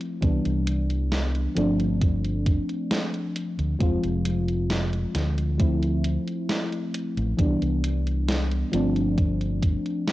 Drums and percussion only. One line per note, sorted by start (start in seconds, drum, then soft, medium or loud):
0.01 closed hi-hat soft
0.22 kick loud
0.22 closed hi-hat medium
0.45 closed hi-hat soft
0.67 closed hi-hat medium
0.90 closed hi-hat soft
1.12 snare loud
1.12 closed hi-hat medium
1.35 closed hi-hat soft
1.57 closed hi-hat medium
1.80 closed hi-hat soft
2.02 kick loud
2.02 closed hi-hat medium
2.25 closed hi-hat soft
2.46 kick loud
2.46 closed hi-hat medium
2.69 closed hi-hat soft
2.91 snare loud
2.91 closed hi-hat medium
3.14 closed hi-hat soft
3.36 closed hi-hat medium
3.59 closed hi-hat soft
3.80 kick loud
3.80 closed hi-hat medium
4.04 closed hi-hat soft
4.25 closed hi-hat medium
4.48 closed hi-hat soft
4.70 snare loud
4.70 closed hi-hat medium
4.93 closed hi-hat soft
5.15 snare medium
5.15 closed hi-hat medium
5.38 closed hi-hat soft
5.60 kick loud
5.60 closed hi-hat medium
5.83 closed hi-hat soft
6.04 closed hi-hat medium
6.28 closed hi-hat soft
6.49 snare loud
6.49 closed hi-hat medium
6.72 closed hi-hat soft
6.94 closed hi-hat medium
7.17 closed hi-hat soft
7.39 kick loud
7.39 closed hi-hat medium
7.62 closed hi-hat soft
7.84 closed hi-hat medium
8.07 closed hi-hat soft
8.29 snare loud
8.29 closed hi-hat medium
8.51 closed hi-hat soft
8.73 closed hi-hat medium
8.96 closed hi-hat soft
9.18 kick loud
9.18 closed hi-hat medium
9.41 closed hi-hat soft
9.62 kick loud
9.62 closed hi-hat medium
9.86 closed hi-hat soft
10.08 snare loud
10.08 closed hi-hat medium